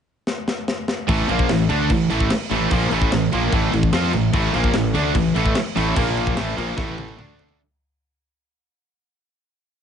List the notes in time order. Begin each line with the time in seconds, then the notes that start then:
0.27 snare
0.48 snare
0.68 snare
0.88 snare
1.09 A1 A2 E3 A3, kick, crash
1.29 A#1 A#2 F3 A#3, crash
1.39 kick
1.49 A1 A2 E3, snare, crash
1.69 D2 D3 A3 D4, crash
1.90 A1 A2 E3, kick, crash
2.10 A1 A2 E3 A3, crash
2.20 kick
2.30 snare, crash
2.51 A1 A2 E3 A3, crash
2.71 A#1 A#2 F3 A#3, kick, crash
2.91 A1 A2 E3 A3, crash
3.02 kick
3.12 A1 A2 E3, snare, crash
3.32 A#1 A#2 F3 A#3, crash
3.52 A1 A2 E3 A3, kick, crash
3.73 A1 A2 E3, crash
3.83 kick
3.92 F2 F3 C4 F4, snare, crash
4.13 A1 A2 E3, crash
4.33 A1 A2 E3 A3, kick, crash
4.54 A#1 A#2 F3 A#3, crash
4.64 kick
4.74 A1 A2 E3, snare, crash
4.95 D2 D3 A3 D4, crash
5.15 A1 A2 E3, kick, crash
5.35 A1 A2 E3 A3, crash
5.46 kick
5.55 snare, crash
5.76 A1 A2 E3 A3, crash
5.96 A#1 A#2 F3 A#3, kick, crash
6.17 crash
6.27 kick
6.37 A1 A2 E3 A3, snare, crash
6.56 A#1 A#2 F3 A#3, crash
6.77 A1 A2 E3 A3, kick, snare
6.98 high tom
7.08 high tom
7.18 D2 D3 A3 D4, mid tom
7.39 floor tom
7.49 floor tom